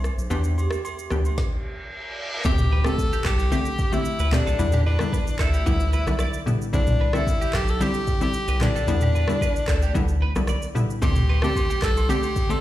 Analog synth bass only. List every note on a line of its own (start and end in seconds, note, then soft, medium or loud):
0.18 0.27 B1 medium
0.31 0.69 E2 loud
1.11 1.30 D2 loud
2.45 2.83 D2 loud
3.25 3.54 C2 medium
4.19 4.38 D2 medium
4.46 4.55 B1 loud
4.59 4.97 E2 loud
5.40 5.59 D2 loud
5.66 5.95 D2 loud
6.07 6.26 B1 medium
6.73 7.11 C2 loud
7.54 7.83 B1 medium
8.48 8.67 C2 medium
8.75 8.84 B1 medium
8.88 9.26 E2 loud
9.68 9.87 D2 loud
9.95 10.24 D2 medium
10.36 10.55 B1 medium
11.02 11.40 D2 loud
11.83 12.11 C2 medium